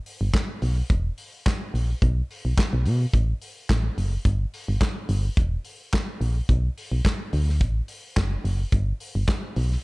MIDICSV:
0, 0, Header, 1, 3, 480
1, 0, Start_track
1, 0, Tempo, 559232
1, 1730, Time_signature, 4, 2, 24, 8
1, 8444, End_track
2, 0, Start_track
2, 0, Title_t, "FM bass"
2, 0, Program_c, 0, 39
2, 179, Note_on_c, 0, 31, 100
2, 260, Note_off_c, 0, 31, 0
2, 534, Note_on_c, 0, 35, 100
2, 707, Note_off_c, 0, 35, 0
2, 774, Note_on_c, 0, 28, 91
2, 947, Note_off_c, 0, 28, 0
2, 1494, Note_on_c, 0, 34, 78
2, 1667, Note_off_c, 0, 34, 0
2, 1736, Note_on_c, 0, 35, 105
2, 1908, Note_off_c, 0, 35, 0
2, 2103, Note_on_c, 0, 35, 79
2, 2183, Note_off_c, 0, 35, 0
2, 2343, Note_on_c, 0, 35, 99
2, 2453, Note_on_c, 0, 47, 114
2, 2466, Note_off_c, 0, 35, 0
2, 2626, Note_off_c, 0, 47, 0
2, 2690, Note_on_c, 0, 33, 99
2, 2865, Note_off_c, 0, 33, 0
2, 3171, Note_on_c, 0, 33, 101
2, 3345, Note_off_c, 0, 33, 0
2, 3414, Note_on_c, 0, 30, 88
2, 3587, Note_off_c, 0, 30, 0
2, 3649, Note_on_c, 0, 31, 100
2, 3824, Note_off_c, 0, 31, 0
2, 4021, Note_on_c, 0, 31, 98
2, 4101, Note_off_c, 0, 31, 0
2, 4369, Note_on_c, 0, 31, 118
2, 4543, Note_off_c, 0, 31, 0
2, 4611, Note_on_c, 0, 28, 95
2, 4785, Note_off_c, 0, 28, 0
2, 5328, Note_on_c, 0, 34, 86
2, 5503, Note_off_c, 0, 34, 0
2, 5572, Note_on_c, 0, 35, 103
2, 5745, Note_off_c, 0, 35, 0
2, 5936, Note_on_c, 0, 35, 83
2, 6018, Note_off_c, 0, 35, 0
2, 6293, Note_on_c, 0, 38, 93
2, 6531, Note_on_c, 0, 33, 107
2, 6543, Note_off_c, 0, 38, 0
2, 6705, Note_off_c, 0, 33, 0
2, 7010, Note_on_c, 0, 30, 92
2, 7185, Note_off_c, 0, 30, 0
2, 7249, Note_on_c, 0, 30, 102
2, 7424, Note_off_c, 0, 30, 0
2, 7488, Note_on_c, 0, 31, 101
2, 7663, Note_off_c, 0, 31, 0
2, 7856, Note_on_c, 0, 31, 93
2, 7938, Note_off_c, 0, 31, 0
2, 8210, Note_on_c, 0, 35, 106
2, 8384, Note_off_c, 0, 35, 0
2, 8444, End_track
3, 0, Start_track
3, 0, Title_t, "Drums"
3, 53, Note_on_c, 9, 46, 62
3, 139, Note_off_c, 9, 46, 0
3, 289, Note_on_c, 9, 36, 122
3, 294, Note_on_c, 9, 42, 73
3, 295, Note_on_c, 9, 39, 105
3, 299, Note_on_c, 9, 38, 127
3, 375, Note_off_c, 9, 36, 0
3, 380, Note_off_c, 9, 42, 0
3, 381, Note_off_c, 9, 39, 0
3, 385, Note_off_c, 9, 38, 0
3, 532, Note_on_c, 9, 46, 73
3, 618, Note_off_c, 9, 46, 0
3, 772, Note_on_c, 9, 36, 127
3, 775, Note_on_c, 9, 42, 67
3, 858, Note_off_c, 9, 36, 0
3, 861, Note_off_c, 9, 42, 0
3, 1011, Note_on_c, 9, 46, 63
3, 1097, Note_off_c, 9, 46, 0
3, 1255, Note_on_c, 9, 36, 125
3, 1258, Note_on_c, 9, 42, 80
3, 1260, Note_on_c, 9, 39, 100
3, 1264, Note_on_c, 9, 38, 113
3, 1340, Note_off_c, 9, 36, 0
3, 1344, Note_off_c, 9, 42, 0
3, 1346, Note_off_c, 9, 39, 0
3, 1350, Note_off_c, 9, 38, 0
3, 1503, Note_on_c, 9, 46, 68
3, 1589, Note_off_c, 9, 46, 0
3, 1734, Note_on_c, 9, 36, 127
3, 1736, Note_on_c, 9, 42, 59
3, 1820, Note_off_c, 9, 36, 0
3, 1822, Note_off_c, 9, 42, 0
3, 1979, Note_on_c, 9, 46, 72
3, 2065, Note_off_c, 9, 46, 0
3, 2210, Note_on_c, 9, 36, 125
3, 2218, Note_on_c, 9, 42, 82
3, 2219, Note_on_c, 9, 39, 100
3, 2223, Note_on_c, 9, 38, 127
3, 2296, Note_off_c, 9, 36, 0
3, 2304, Note_off_c, 9, 42, 0
3, 2305, Note_off_c, 9, 39, 0
3, 2309, Note_off_c, 9, 38, 0
3, 2451, Note_on_c, 9, 46, 76
3, 2537, Note_off_c, 9, 46, 0
3, 2691, Note_on_c, 9, 36, 121
3, 2695, Note_on_c, 9, 42, 71
3, 2777, Note_off_c, 9, 36, 0
3, 2781, Note_off_c, 9, 42, 0
3, 2931, Note_on_c, 9, 46, 63
3, 3017, Note_off_c, 9, 46, 0
3, 3172, Note_on_c, 9, 36, 119
3, 3175, Note_on_c, 9, 42, 80
3, 3176, Note_on_c, 9, 39, 104
3, 3180, Note_on_c, 9, 38, 119
3, 3258, Note_off_c, 9, 36, 0
3, 3260, Note_off_c, 9, 42, 0
3, 3262, Note_off_c, 9, 39, 0
3, 3266, Note_off_c, 9, 38, 0
3, 3415, Note_on_c, 9, 46, 68
3, 3501, Note_off_c, 9, 46, 0
3, 3649, Note_on_c, 9, 36, 123
3, 3649, Note_on_c, 9, 42, 68
3, 3734, Note_off_c, 9, 42, 0
3, 3735, Note_off_c, 9, 36, 0
3, 3894, Note_on_c, 9, 46, 72
3, 3980, Note_off_c, 9, 46, 0
3, 4127, Note_on_c, 9, 36, 127
3, 4132, Note_on_c, 9, 42, 84
3, 4133, Note_on_c, 9, 39, 100
3, 4137, Note_on_c, 9, 38, 127
3, 4213, Note_off_c, 9, 36, 0
3, 4218, Note_off_c, 9, 42, 0
3, 4219, Note_off_c, 9, 39, 0
3, 4223, Note_off_c, 9, 38, 0
3, 4368, Note_on_c, 9, 46, 69
3, 4454, Note_off_c, 9, 46, 0
3, 4610, Note_on_c, 9, 36, 127
3, 4612, Note_on_c, 9, 42, 76
3, 4696, Note_off_c, 9, 36, 0
3, 4698, Note_off_c, 9, 42, 0
3, 4846, Note_on_c, 9, 46, 57
3, 4932, Note_off_c, 9, 46, 0
3, 5091, Note_on_c, 9, 36, 108
3, 5094, Note_on_c, 9, 42, 77
3, 5096, Note_on_c, 9, 39, 89
3, 5099, Note_on_c, 9, 38, 117
3, 5177, Note_off_c, 9, 36, 0
3, 5180, Note_off_c, 9, 42, 0
3, 5181, Note_off_c, 9, 39, 0
3, 5185, Note_off_c, 9, 38, 0
3, 5333, Note_on_c, 9, 46, 69
3, 5419, Note_off_c, 9, 46, 0
3, 5570, Note_on_c, 9, 36, 124
3, 5571, Note_on_c, 9, 42, 68
3, 5656, Note_off_c, 9, 36, 0
3, 5657, Note_off_c, 9, 42, 0
3, 5816, Note_on_c, 9, 46, 73
3, 5901, Note_off_c, 9, 46, 0
3, 6049, Note_on_c, 9, 36, 116
3, 6056, Note_on_c, 9, 42, 74
3, 6057, Note_on_c, 9, 39, 108
3, 6061, Note_on_c, 9, 38, 127
3, 6135, Note_off_c, 9, 36, 0
3, 6142, Note_off_c, 9, 42, 0
3, 6143, Note_off_c, 9, 39, 0
3, 6147, Note_off_c, 9, 38, 0
3, 6291, Note_on_c, 9, 46, 76
3, 6377, Note_off_c, 9, 46, 0
3, 6430, Note_on_c, 9, 38, 39
3, 6516, Note_off_c, 9, 38, 0
3, 6530, Note_on_c, 9, 36, 127
3, 6533, Note_on_c, 9, 42, 69
3, 6616, Note_off_c, 9, 36, 0
3, 6619, Note_off_c, 9, 42, 0
3, 6765, Note_on_c, 9, 46, 65
3, 6851, Note_off_c, 9, 46, 0
3, 7010, Note_on_c, 9, 36, 108
3, 7012, Note_on_c, 9, 42, 76
3, 7014, Note_on_c, 9, 39, 104
3, 7017, Note_on_c, 9, 38, 122
3, 7096, Note_off_c, 9, 36, 0
3, 7098, Note_off_c, 9, 42, 0
3, 7099, Note_off_c, 9, 39, 0
3, 7103, Note_off_c, 9, 38, 0
3, 7253, Note_on_c, 9, 46, 68
3, 7339, Note_off_c, 9, 46, 0
3, 7485, Note_on_c, 9, 42, 61
3, 7488, Note_on_c, 9, 36, 124
3, 7571, Note_off_c, 9, 42, 0
3, 7574, Note_off_c, 9, 36, 0
3, 7728, Note_on_c, 9, 46, 69
3, 7814, Note_off_c, 9, 46, 0
3, 7964, Note_on_c, 9, 36, 127
3, 7968, Note_on_c, 9, 42, 79
3, 7969, Note_on_c, 9, 39, 99
3, 7973, Note_on_c, 9, 38, 127
3, 8050, Note_off_c, 9, 36, 0
3, 8054, Note_off_c, 9, 42, 0
3, 8055, Note_off_c, 9, 39, 0
3, 8059, Note_off_c, 9, 38, 0
3, 8207, Note_on_c, 9, 46, 75
3, 8293, Note_off_c, 9, 46, 0
3, 8343, Note_on_c, 9, 38, 40
3, 8429, Note_off_c, 9, 38, 0
3, 8444, End_track
0, 0, End_of_file